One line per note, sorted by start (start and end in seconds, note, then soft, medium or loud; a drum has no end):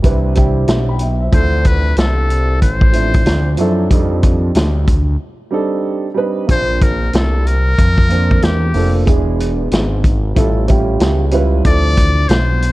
0.02 0.65 C2 loud
0.02 0.30 G3 medium
0.02 0.31 C4 medium
0.02 0.31 D4 medium
0.02 0.32 E4 medium
0.02 0.32 B4 loud
0.02 kick medium
0.02 closed hi-hat medium
0.34 0.89 G3 medium
0.34 0.89 C4 medium
0.34 0.90 D4 medium
0.34 0.90 E4 medium
0.34 0.91 G4 medium
0.34 kick medium
0.34 closed hi-hat medium
0.68 1.29 B1 medium
0.68 0.88 C5 medium
0.68 0.87 E5 medium
0.68 snare loud
0.68 closed hi-hat medium
0.89 0.99 G5 medium
0.89 1.00 B5 medium
0.99 1.19 E5 medium
0.99 1.20 G5 medium
0.99 closed hi-hat medium
1.20 1.52 C5 soft
1.20 1.51 E5 medium
1.31 1.94 D2 loud
1.31 2.33 F3 medium
1.31 2.33 C4 medium
1.31 2.34 D4 medium
1.31 2.34 E4 medium
1.31 2.35 A4 medium
1.31 1.68 C5 medium
1.31 kick loud
1.31 closed hi-hat medium
1.65 1.98 B4 medium
1.65 kick loud
1.65 closed hi-hat medium
1.97 2.64 C2 medium
1.97 2.59 A4 medium
1.97 snare loud
1.97 closed hi-hat medium
2.30 closed hi-hat medium
2.62 3.23 A1 medium
2.62 3.55 C5 medium
2.62 kick medium
2.62 closed hi-hat medium
2.81 kick loud
2.92 3.47 F3 medium
2.92 3.47 C4 medium
2.92 3.48 D4 medium
2.92 3.48 E4 medium
2.92 3.49 C5 medium
2.92 closed hi-hat medium
3.14 kick loud
3.14 closed hi-hat medium
3.26 3.57 D2 medium
3.26 snare loud
3.26 closed hi-hat medium
3.57 3.89 F#2 medium
3.57 3.85 F3 medium
3.57 3.85 C4 medium
3.57 3.85 D4 medium
3.57 3.86 E4 medium
3.57 3.86 A4 loud
3.57 closed hi-hat medium
3.89 4.52 F2 medium
3.89 4.91 G3 medium
3.89 4.91 C4 medium
3.89 4.92 D4 medium
3.89 4.92 D#4 medium
3.89 4.93 A4 medium
3.89 kick loud
3.89 closed hi-hat medium
4.23 kick medium
4.23 closed hi-hat medium
4.55 5.17 D2 loud
4.55 snare loud
4.55 closed hi-hat medium
4.88 kick loud
4.88 closed hi-hat medium
5.51 6.05 G3 medium
5.51 6.06 C4 medium
5.51 6.06 D4 medium
5.51 6.06 D#4 medium
5.51 6.07 A4 loud
6.14 6.42 G3 medium
6.14 6.43 C4 medium
6.14 6.43 D4 medium
6.14 6.44 D#4 medium
6.14 6.44 B4 loud
6.47 7.10 A#1 loud
6.47 7.49 A#3 medium
6.47 7.49 C4 medium
6.47 7.50 D4 medium
6.47 7.50 F4 medium
6.47 7.51 C5 medium
6.47 kick loud
6.47 closed hi-hat medium
6.51 6.85 C5 loud
6.81 7.14 A#4 medium
6.81 kick loud
6.81 closed hi-hat medium
7.13 7.75 C2 loud
7.13 7.49 A4 medium
7.13 snare loud
7.13 closed hi-hat medium
7.47 8.46 A#4 loud
7.47 closed hi-hat medium
7.78 8.40 F2 loud
7.78 kick medium
7.78 closed hi-hat medium
7.98 kick medium
8.09 8.63 A#3 medium
8.09 8.64 C4 medium
8.09 8.64 D4 medium
8.09 8.65 F4 medium
8.09 8.65 A#4 medium
8.09 closed hi-hat medium
8.31 kick loud
8.42 8.73 E2 medium
8.42 8.96 G4 medium
8.42 snare loud
8.42 closed hi-hat medium
8.74 9.06 F1 medium
8.74 9.01 A#3 medium
8.74 9.01 C4 medium
8.74 9.02 D4 medium
8.74 9.02 F4 medium
8.74 9.03 A4 medium
8.74 open hi-hat soft
9.06 9.68 E1 loud
9.06 10.07 G#3 medium
9.06 10.08 B3 medium
9.06 10.08 D4 medium
9.06 10.09 E4 medium
9.06 10.09 G#4 medium
9.06 kick loud
9.06 closed hi-hat medium
9.40 closed hi-hat medium
9.71 10.33 G#1 loud
9.71 snare loud
9.71 closed hi-hat medium
10.04 kick loud
10.04 closed hi-hat medium
10.35 10.97 A1 loud
10.35 10.63 G3 medium
10.35 10.63 C#4 medium
10.35 10.64 E4 medium
10.35 10.64 F4 medium
10.35 10.64 A4 medium
10.35 kick medium
10.35 closed hi-hat medium
10.67 11.22 G3 medium
10.67 11.22 C#4 medium
10.67 11.22 E4 medium
10.67 11.23 F4 medium
10.67 11.23 G4 medium
10.67 kick medium
10.67 closed hi-hat medium
11.00 11.62 C#2 medium
11.00 snare loud
11.00 closed hi-hat medium
11.31 11.59 G3 medium
11.31 11.59 C#4 medium
11.31 11.60 E4 medium
11.31 11.60 F4 medium
11.31 11.60 B4 loud
11.31 closed hi-hat medium
11.63 12.26 D2 medium
11.63 12.65 F3 medium
11.63 12.65 C4 medium
11.63 12.66 D4 medium
11.63 12.66 E4 medium
11.63 12.67 A4 medium
11.63 12.30 D5 loud
11.63 kick loud
11.63 closed hi-hat medium
11.97 kick loud
11.97 closed hi-hat medium
12.29 12.72 B1 medium
12.29 12.72 C5 medium
12.29 snare loud
12.29 closed hi-hat medium
12.62 closed hi-hat medium